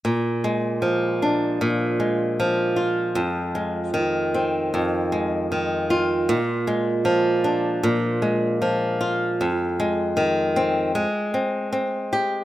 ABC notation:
X:1
M:4/4
L:1/8
Q:"Swing 16ths" 1/4=77
K:Bbmix
V:1 name="Nylon-string guitar" clef=bass
B,, A, F, D B,, A, F, F | F,, A, E, C F,, A, E, F | B,, A, F, D B,, A, F, F | F,, A, E, C A, C C G |]